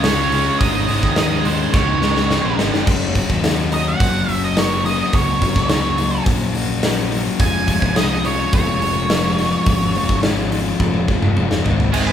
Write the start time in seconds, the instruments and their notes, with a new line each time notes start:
Already playing: picked electric bass C#2
0.03 distorted electric guitar C#3 G#3 C#4 F4, lead electric guitar C#5, snare, open hi-hat
0.31 distorted electric guitar C#3 G#3 C#4 F4, open hi-hat
0.59 picked electric bass G#1, distorted electric guitar G#2 C#3 G#3 C#4 D#4, overdriven electric guitar D#3, lead electric guitar D#5, kick, open hi-hat
0.88 picked electric bass G#1, distorted electric guitar G#2 C#3 G#3 C#4 D#4, overdriven electric guitar D#3, open hi-hat
1.02 picked electric bass D#2, kick
1.16 distorted electric guitar G#2 C#3 G#3 C#4 D#4, overdriven electric guitar D#3, lead electric guitar D#5, snare, open hi-hat
1.45 distorted electric guitar G#2 C#3 G#3 C#4 D#4, overdriven electric guitar D#3, lead electric guitar C5, open hi-hat
1.72 picked electric bass C#2, distorted electric guitar G#2 C#3 G#3 C#4 D#4, overdriven electric guitar D#3, lead electric guitar C#5, kick, snare
2.00 distorted electric guitar G#2 C#3 G#3 C#4 D#4, overdriven electric guitar D#3, snare
2.16 snare
2.29 distorted electric guitar G#2 C#3 G#3 C#4 D#4, overdriven electric guitar D#3, snare
2.45 picked electric bass A#1
2.58 picked electric bass G#1, distorted electric guitar G#2 C#3 G#3 C#4 D#4, overdriven electric guitar D#3, snare
2.74 picked electric bass F#1, snare
2.87 picked electric bass F#1, distorted electric guitar F#3 A#3 C#4 F#4, kick, crash
3.15 picked electric bass F#1, distorted electric guitar F#3 A#3 C#4 F#4, kick, open hi-hat
3.30 picked electric bass D#2, kick
3.43 distorted electric guitar F#3 A#3 C#4 F#4, snare, open hi-hat
3.70 distorted electric guitar F#3 A#3 C#4 F#4, lead electric guitar D#5, open hi-hat
3.88 lead electric guitar F#5
4.00 picked electric bass F#1, distorted electric guitar F#3 A#3 C#4 F#4, kick, open hi-hat
4.28 distorted electric guitar F#3 A#3 C#4 F#4, lead electric guitar E5, open hi-hat
4.44 lead electric guitar D#5
4.56 distorted electric guitar F#3 A#3 C#4 F#4, lead electric guitar C#5, snare, open hi-hat
4.84 distorted electric guitar F#3 A#3 C#4 F#4, lead electric guitar D#5, snare, open hi-hat
5.00 snare
5.12 picked electric bass C#2, distorted electric guitar F#3 A#3 C#4 F#4, lead electric guitar C#5, kick, open hi-hat
5.42 picked electric bass F#1, distorted electric guitar F#3 A#3 C#4 F#4, kick, open hi-hat
5.56 picked electric bass C#2, kick, snare
5.69 distorted electric guitar F#3 A#3 C#4 F#4, snare, open hi-hat
5.98 distorted electric guitar F#3 A#3 C#4 F#4, open hi-hat
6.26 picked electric bass A#1, distorted electric guitar F#3 A#3 C#4 F#4, kick, open hi-hat
6.55 distorted electric guitar F#3 A#3 C#4 F#4, open hi-hat
6.83 distorted electric guitar F#3 A#3 C#4 F#4, snare, open hi-hat
7.11 distorted electric guitar F#3 A#3 C#4 F#4, open hi-hat
7.40 picked electric bass F1, distorted electric guitar F3 G#3 C#4 F4, lead electric guitar G#5, kick, open hi-hat
7.68 picked electric bass F1, distorted electric guitar F3 G#3 C#4 F4, kick, open hi-hat
7.82 picked electric bass C2, kick
7.96 distorted electric guitar F3 G#3 C#4 F4, lead electric guitar D#5, snare, open hi-hat
8.25 distorted electric guitar F3 G#3 C#4 F4, lead electric guitar C#5, open hi-hat
8.53 picked electric bass F1, distorted electric guitar F3 G#3 C#4 F4, lead electric guitar C#5, kick, open hi-hat
8.82 distorted electric guitar F3 G#3 C#4 F4, open hi-hat
9.10 distorted electric guitar F3 G#3 C#4 F4, snare, open hi-hat
9.38 distorted electric guitar F3 G#3 C#4 F4, snare, open hi-hat
9.66 picked electric bass G#1, distorted electric guitar F3 G#3 C#4 F4, kick, open hi-hat
9.95 picked electric bass F1, distorted electric guitar F3 G#3 C#4 F4, open hi-hat
10.09 picked electric bass G#1, kick, snare
10.23 distorted electric guitar F3 G#3 C#4 F4, snare, open hi-hat
10.52 distorted electric guitar F3 G#3 C#4 F4, open hi-hat
10.80 picked electric bass F1, distorted electric guitar F3 G#3 C#4 F4, kick
10.94 high tom
11.08 distorted electric guitar F3 G#3 C#4 F4, kick
11.22 mid tom
11.36 distorted electric guitar F3 G#3 C#4 F4, mid tom
11.51 snare
11.64 picked electric bass G#1, distorted electric guitar G#2 D#3 G#3 C4 D#4, floor tom
11.80 floor tom
11.92 distorted electric guitar G#2 D#3 G#3 C4 D#4, lead electric guitar G#4, crash
12.07 lead electric guitar B4